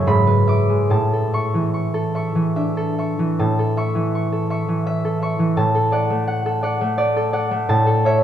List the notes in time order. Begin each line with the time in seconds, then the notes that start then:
Already playing: F#2 C#3 A3 A4 E5 A5 C#6
0.07 G#2 B5
0.27 B4
0.47 E5 D6
0.69 G#3
0.90 A2 A5
1.13 A4
1.33 E5 C#6
1.54 E3
1.74 C#6
1.94 A4
2.15 E5 C#6
2.35 E3
2.56 D4 E5
2.77 A4
2.99 E5 C#6
3.19 E3
3.39 A2 A5
3.59 A4
3.77 E5 C#6
3.95 E3
4.15 C#6
4.32 A4
4.50 E5 C#6
4.68 E3
4.87 E5
5.05 A4
5.22 E5 C#6
5.39 E3
5.57 A2 A5
5.75 A4
5.92 D5 F#5
6.10 A3
6.28 F#5
6.46 A4
6.63 D5 F#5
6.81 A3
6.98 D5
7.17 A4
7.33 D5 F#5
7.51 A3
7.69 A2 A5
7.86 A4
8.05 C#5 E5